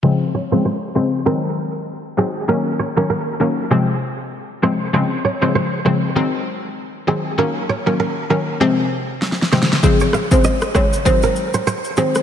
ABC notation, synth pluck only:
X:1
M:4/4
L:1/16
Q:"Swing 16ths" 1/4=98
K:Db
V:1 name="Synth pluck" clef=bass
[D,F,A,C] z2 [D,F,A,C] z2 [D,F,A,C] z [E,G,A,C]6 [E,G,A,C]2 | [E,G,B,D] z2 [E,G,B,D] z2 [E,G,B,D] z [C,F,A,C]6 [C,F,A,C] z | [D,F,A,C] z2 [D,F,A,C] z2 [D,F,A,C] z [E,G,A,C]6 [E,G,A,C] z | [E,G,B,D] z2 [E,G,B,D] z2 [E,G,B,D] z [C,F,A,C]6 [C,F,A,C] z |
[D,F,A,C] z2 [D,F,A,C] z2 [D,F,A,C] z [E,G,A,C]6 [E,G,A,C] z |]